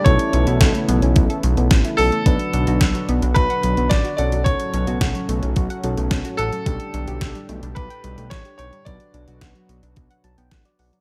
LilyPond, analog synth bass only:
\new Staff \with { instrumentName = "Analog synth bass" } { \clef bass \time 4/4 \key b \minor \tempo 4 = 109 b,,16 r16 b,,16 b,,16 b,,16 r16 b,,16 b,,16 b,,16 r16 b,,16 b,,16 a,,16 r16 b,,16 r16 | b,,16 r16 b,,16 b,,16 b,,16 r16 b,,16 b,,16 b,,16 r16 b,,16 b,,16 a,,16 r16 b,,8~ | b,,16 r16 b,,16 b,,16 b,,16 r16 b,,16 b,,16 b,,16 r16 b,,16 b,,16 b,,16 r16 a,,16 r16 | b,,16 r16 b,,16 b,,16 b,,16 r16 b,,16 b,,16 b,,16 r16 b,,16 b,,16 a,,16 r16 b,,16 r16 |
b,,16 r16 b,,16 b,,16 b,,16 r16 b,,16 b,,16 b,,16 r16 b,,16 b,,16 a,,16 r16 b,,16 r16 | }